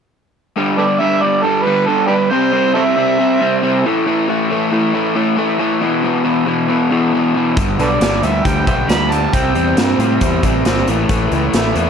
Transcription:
0.56 overdriven electric guitar G2 D3 G3
0.78 overdriven electric guitar G2 D3 G3, harmonica A4 B4 D5
1.00 overdriven electric guitar G2 D3 G3, harmonica E5
1.22 overdriven electric guitar G2 D3 G3, harmonica D5
1.43 overdriven electric guitar G2 D3 G3, harmonica A4
1.64 overdriven electric guitar G2 D3 G3, harmonica B4
1.86 overdriven electric guitar G2 D3 G3, harmonica A4
2.07 overdriven electric guitar G2 D3, harmonica D4 G4 B4
2.11 overdriven electric guitar G3
2.31 overdriven electric guitar C3 G3 C4, harmonica C5
2.53 overdriven electric guitar C3 G3 C4
2.74 overdriven electric guitar C3 G3 C4, harmonica A4 C5 E5
2.97 overdriven electric guitar C3 G3 C4
3.19 overdriven electric guitar C3 G3 C4
3.40 overdriven electric guitar C3 G3 C4
3.63 overdriven electric guitar C3 G3 C4
3.85 overdriven electric guitar A2 E3 A3
4.06 overdriven electric guitar A2 E3 A3
4.29 overdriven electric guitar A2 E3 A3
4.50 overdriven electric guitar A2 E3 A3
4.72 overdriven electric guitar A2 E3 A3
4.94 overdriven electric guitar A2 E3 A3
5.15 overdriven electric guitar A2 E3 A3
5.37 overdriven electric guitar A2 E3 A3
5.59 overdriven electric guitar A2 E3 A3
5.81 overdriven electric guitar E2 B2 E3
6.03 overdriven electric guitar E2 B2 E3
6.24 overdriven electric guitar E2 B2 E3
6.46 overdriven electric guitar E2 B2 E3
6.68 overdriven electric guitar E2 B2 E3
6.91 overdriven electric guitar E2 B2 E3
7.13 overdriven electric guitar E2 B2 E3
7.36 overdriven electric guitar E2 B2 E3
7.57 fingered electric bass G1, overdriven electric guitar G2 D3 G3, kick, closed hi-hat
7.78 fingered electric bass B1, overdriven electric guitar G2 D3 G3, harmonica A4 B4 D5, closed hi-hat
8.01 fingered electric bass G1, overdriven electric guitar G2 D3 G3, snare, closed hi-hat
8.23 fingered electric bass D2, overdriven electric guitar G2 D3 G3, harmonica E5, closed hi-hat
8.45 fingered electric bass D2, overdriven electric guitar G2 D3 G3, harmonica G5, kick, closed hi-hat
8.67 fingered electric bass B1, overdriven electric guitar G2 D3 G3, harmonica C5 E5 G5, kick, closed hi-hat
8.89 fingered electric bass D2, overdriven electric guitar G2 D3 G3, harmonica B5, snare, closed hi-hat
9.11 overdriven electric guitar G2 D3 G3, harmonica A5, closed hi-hat
9.33 fingered electric bass C2, overdriven electric guitar C3 G3 C4, harmonica G5, kick, closed hi-hat
9.54 fingered electric bass E2, overdriven electric guitar C3 G3 C4, closed hi-hat
9.76 fingered electric bass G2, overdriven electric guitar C3 G3 C4, snare, closed hi-hat
9.98 fingered electric bass A2, overdriven electric guitar C3 G3 C4, closed hi-hat
10.21 fingered electric bass E2, overdriven electric guitar C3 G3 C4, kick, closed hi-hat
10.43 fingered electric bass A1, overdriven electric guitar C3 G3 C4, kick, closed hi-hat
10.65 fingered electric bass G1, overdriven electric guitar C3 G3 C4, snare, closed hi-hat
10.88 fingered electric bass A1, overdriven electric guitar A2 E3 A3, closed hi-hat
11.09 fingered electric bass A1, overdriven electric guitar A2 E3 A3, kick, closed hi-hat
11.31 fingered electric bass C#2, overdriven electric guitar A2 E3 A3, closed hi-hat
11.53 fingered electric bass A1, overdriven electric guitar A2 E3 A3, snare, closed hi-hat
11.75 fingered electric bass E2, overdriven electric guitar A2 E3 A3, closed hi-hat

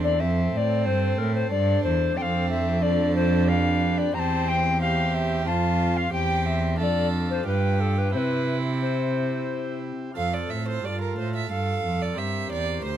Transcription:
Already playing: pipe organ E2 C4 A4 C5, cello E2, violin D4
0.04 recorder D5
0.15 pipe organ C4 A4 C5
0.20 pipe organ F2, cello F2, violin C4, recorder E5
0.52 pipe organ A2, cello A2, recorder E5
0.57 recorder D5
0.86 pipe organ G2, cello G2, recorder C5
1.18 pipe organ A2, cello A2, recorder A#4
1.35 recorder C5
1.50 pipe organ G2, cello G2, violin D4, recorder D5
1.84 pipe organ E2, cello E2, recorder C5
2.13 violin C4, pipe organ D4 A4 C5, recorder G5
2.17 pipe organ F2, cello F2
2.22 recorder F5
2.50 recorder E5
2.82 violin D4, recorder D5
3.16 recorder C5
3.44 pipe organ D4 G4 B4
3.48 recorder F5
3.98 recorder D5
4.10 pipe organ C4 G4 C5
4.14 pipe organ E2, cello E2, violin C4, recorder A#5
4.19 recorder A5
4.48 recorder G5
4.81 violin G4, recorder F5
5.14 recorder E5
5.42 pipe organ C4 F4 C5
5.46 pipe organ F2, cello F2, violin F4, recorder A5
5.97 recorder F5
6.08 pipe organ C4 G4 C5
6.12 pipe organ E2, cello E2, violin G4, recorder G5
6.46 recorder E5
6.75 pipe organ D4 F4 A4
6.79 pipe organ F2, cello F2, violin A4, recorder E5
6.83 recorder D5
7.30 recorder C5
7.42 pipe organ D4 F4 G4
7.46 pipe organ G2, cello G2, violin G4, recorder B4
7.81 recorder A4
7.98 recorder B4
8.09 pipe organ C4 E4 G4
8.14 pipe organ C3, cello C3, violin E4, recorder B4 C5
8.82 recorder C5
10.12 pipe organ C4 F4 A4
10.16 pipe organ F2, cello F2, recorder A4, violin F5
10.34 violin D5
10.50 pipe organ A2, cello A2, violin E5
10.69 violin C5
10.83 pipe organ G2, cello G2, recorder G4, violin D5
10.88 recorder F4
11.01 violin A#4
11.17 pipe organ A2, cello A2, violin C5
11.36 violin E5
11.49 pipe organ G2, cello G2, recorder A4, violin F5
11.84 pipe organ F2, cello F2
12.02 violin D5
12.13 pipe organ C4 A#4 C5
12.17 pipe organ G2, cello G2, recorder G4, violin E5
12.50 pipe organ E2, cello E2, violin D5
12.83 pipe organ D2, cello D2, violin C5

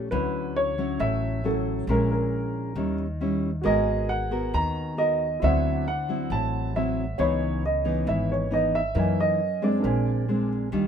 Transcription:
0.11 upright bass D2, nylon-string guitar D3 F#3 C#4 E4, grand piano B4
0.56 grand piano C#5
0.78 nylon-string guitar F#3 C#4 E4
1.00 upright bass A1, nylon-string guitar A2, grand piano E5
1.44 nylon-string guitar F#3 C#4 E4, grand piano A4
1.87 upright bass A#1, nylon-string guitar A#2 G#3 C#4 E4, grand piano A#4
2.11 grand piano A#4
2.75 upright bass D#2, nylon-string guitar D#3 G3 C#4 E4
3.21 nylon-string guitar G3 C#4 E4
3.61 upright bass G#1, nylon-string guitar G#3 B3 F#4 A#4, grand piano F#4 A#4
3.65 grand piano D#5 G#5
4.09 grand piano F#5
4.31 nylon-string guitar B3 F#4 A#4
4.54 upright bass D#2, nylon-string guitar D#3, grand piano A#5
4.97 nylon-string guitar B3 F#4 A#4, grand piano D#5
5.40 upright bass D2, nylon-string guitar D3 F#3 C4 E4, grand piano E4 C5 D5
5.44 grand piano E5 F#5
5.88 grand piano F#5
6.09 nylon-string guitar F#3 C4 E4
6.30 upright bass A1, nylon-string guitar A2, grand piano A5
6.76 nylon-string guitar F#3 C4 E4, grand piano E5
7.18 upright bass C#2, nylon-string guitar C#3 E3 B3 D#4, grand piano C#5 D#5 B5
7.66 grand piano D#5
7.85 nylon-string guitar E3 B3 D#4
8.07 upright bass G#1, nylon-string guitar G#2, grand piano E5
8.32 grand piano C#5
8.51 nylon-string guitar E3 B3 D#4, grand piano D#5
8.75 grand piano E5
8.95 nylon-string guitar F#2 E3 A#3 D#4, upright bass F#2, grand piano A#4 D#5 G#5
9.20 grand piano D#5
9.62 nylon-string guitar G#3 C4 D4, grand piano D5
9.80 grand piano D4 A#4
9.84 upright bass A#1, nylon-string guitar A#2, grand piano C5 G#5
10.28 nylon-string guitar G#3 C4 D4
10.72 upright bass D#2, nylon-string guitar D#3 G3 D4 F4

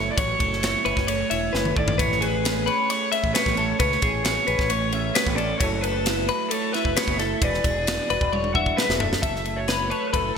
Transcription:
Already playing: clean electric guitar F#3 A3 E4 F#4 A4, overdriven electric guitar C#5
0.12 overdriven electric guitar D5
0.16 fingered electric bass A1, clean electric guitar F#3 C#5, overdriven electric guitar C#5, kick, ride
0.38 fingered electric bass F#1, clean electric guitar A3 A4, kick, ride
0.53 snare
0.63 clean electric guitar E4, overdriven electric guitar C#5, snare, ride
0.84 fingered electric bass F#1, clean electric guitar E4 B4, ride
0.96 fingered electric bass F#1, clean electric guitar F#4, kick, snare
1.07 clean electric guitar A3 C#5, ride
1.30 fingered electric bass E1, clean electric guitar E4 E5, ride
1.53 fingered electric bass F#1, clean electric guitar A3 B4, snare
1.65 mid tom
1.76 fingered electric bass G#1, clean electric guitar E4 A4, overdriven electric guitar D5, kick
1.88 floor tom
1.98 fingered electric bass A1, clean electric guitar A2 B4, overdriven electric guitar C#5, kick, ride
2.12 snare
2.21 clean electric guitar A3 G#4, overdriven electric guitar B4, ride
2.45 clean electric guitar C#4, snare, ride
2.66 clean electric guitar G#4 B4, overdriven electric guitar C#5, ride
2.90 clean electric guitar A3 C#5, ride
3.12 clean electric guitar C#4 E5, overdriven electric guitar E5, ride
3.24 fingered electric bass A1, kick
3.34 clean electric guitar A3 B4, overdriven electric guitar C#5, snare, ride
3.46 fingered electric bass A1, kick, snare
3.57 clean electric guitar C#4 A4, ride
3.80 fingered electric bass C#2, clean electric guitar A2 B4, overdriven electric guitar C#5, kick, ride
3.92 snare
4.02 fingered electric bass A1, clean electric guitar A3 G#4, kick, ride
4.25 clean electric guitar C#4, overdriven electric guitar C#5, snare, ride
4.47 fingered electric bass A1, clean electric guitar G#4 B4, ride
4.59 fingered electric bass A1, kick, snare
4.70 clean electric guitar A3 C#5, ride
4.92 clean electric guitar C#4 E5, ride
5.15 clean electric guitar A3 B4, snare, ride
5.27 fingered electric bass A1, kick
5.36 clean electric guitar C#4 A4, overdriven electric guitar D5, ride
5.58 fingered electric bass F#1, clean electric guitar F#3 A3 C#5, overdriven electric guitar C#5, kick, ride
5.62 clean electric guitar E4 F#4 A4
5.82 clean electric guitar A3 A4, overdriven electric guitar B4, ride
6.06 clean electric guitar E4, snare, ride
6.29 clean electric guitar F#4 B4, ride
6.50 clean electric guitar A3 C#5, overdriven electric guitar A4, ride
6.73 clean electric guitar E4 E5, overdriven electric guitar B4, snare, ride
6.85 fingered electric bass F#1, kick
6.96 clean electric guitar A3 B4, overdriven electric guitar C#5, snare, ride
7.08 fingered electric bass F#1, kick
7.19 clean electric guitar E4 A4, overdriven electric guitar E5, snare, ride
7.42 fingered electric bass E1, clean electric guitar E3 B4, overdriven electric guitar D5, kick, ride
7.54 snare
7.64 fingered electric bass E1, clean electric guitar G#3 G#4, kick, ride
7.87 clean electric guitar D4, snare, ride
8.10 fingered electric bass E1, clean electric guitar F#4 B4, ride
8.21 fingered electric bass E1, kick
8.32 clean electric guitar G#3 C#5, high tom
8.44 high tom
8.54 clean electric guitar D4 E5, overdriven electric guitar F#5, kick
8.66 kick
8.76 clean electric guitar G#3 B4, overdriven electric guitar E5, snare
8.89 fingered electric bass E1, snare
9.00 clean electric guitar D4 A4, floor tom
9.13 snare
9.21 fingered electric bass F#1, clean electric guitar F#3 A4 E5, overdriven electric guitar E5, kick, ride
9.36 snare
9.45 clean electric guitar A3, ride
9.56 overdriven electric guitar C#5
9.68 clean electric guitar F#4 B4, snare, ride
9.90 clean electric guitar A4 C#5, overdriven electric guitar B4, ride
10.08 overdriven electric guitar B4
10.13 fingered electric bass F#1, clean electric guitar E4 B4, overdriven electric guitar A4, kick, ride

